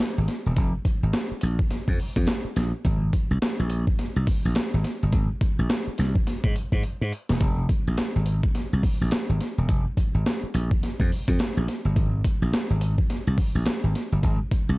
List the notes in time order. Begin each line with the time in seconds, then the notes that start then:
0.00 muted slap bass stroke, snare
0.18 G#1
0.28 snare, closed hi-hat
0.46 E1
0.56 F1, kick, closed hi-hat
0.85 kick, closed hi-hat
1.03 G#1
1.13 snare, closed hi-hat
1.31 muted slap bass stroke
1.41 A#1, closed hi-hat
1.59 kick
1.71 muted slap bass stroke, snare, closed hi-hat
1.88 F2, kick
1.99 open hi-hat
2.16 F2, kick
2.27 snare, closed hi-hat
2.45 muted slap bass stroke
2.56 A#1, snare, closed hi-hat
2.85 G#1, kick, closed hi-hat
3.13 kick, closed hi-hat
3.31 C2
3.42 snare, closed hi-hat
3.60 A#1
3.70 closed hi-hat
3.87 kick
3.99 snare, closed hi-hat
4.16 C2
4.27 kick, open hi-hat
4.45 A#1
4.55 muted slap bass stroke, snare, closed hi-hat
4.74 G#1
4.84 snare, closed hi-hat
5.03 G1
5.13 G#1, kick, closed hi-hat
5.41 kick, closed hi-hat
5.59 A#1
5.70 snare, closed hi-hat
5.87 muted slap bass stroke
5.98 C2, snare, closed hi-hat
6.15 kick
6.27 snare, closed hi-hat
6.44 G#2, kick
6.56 closed hi-hat
6.72 G#2, kick
6.83 closed hi-hat
7.01 G#2
7.12 closed hi-hat
7.29 E1, snare
7.41 F1, kick, closed hi-hat
7.69 kick, closed hi-hat
7.87 A#1
7.98 snare, closed hi-hat
8.16 G#1
8.26 closed hi-hat
8.43 kick
8.55 snare, closed hi-hat
8.73 C2
8.83 kick, open hi-hat
9.01 A#1
9.11 muted slap bass stroke, snare, closed hi-hat
9.29 G#1
9.41 snare, closed hi-hat
9.58 E1
9.69 F1, kick, closed hi-hat
9.97 kick, closed hi-hat
10.14 G#1
10.26 snare, closed hi-hat
10.43 muted slap bass stroke
10.54 A#1, closed hi-hat
10.71 kick
10.82 muted slap bass stroke, snare, closed hi-hat
11.00 F2, kick
11.12 open hi-hat
11.28 F2, kick
11.39 muted slap bass stroke, snare, closed hi-hat
11.57 A#1
11.68 snare, closed hi-hat
11.85 G1
11.96 G#1, kick, closed hi-hat
12.24 kick, closed hi-hat
12.42 A#1
12.53 muted slap bass stroke, snare, closed hi-hat
12.70 G#1
12.81 closed hi-hat
12.98 kick
13.10 snare, closed hi-hat
13.27 C2
13.38 kick, open hi-hat
13.55 A#1
13.66 muted slap bass stroke, snare, closed hi-hat
13.84 G#1
13.95 snare, closed hi-hat
14.12 G1
14.23 G#1, kick, closed hi-hat
14.51 kick, closed hi-hat
14.69 C2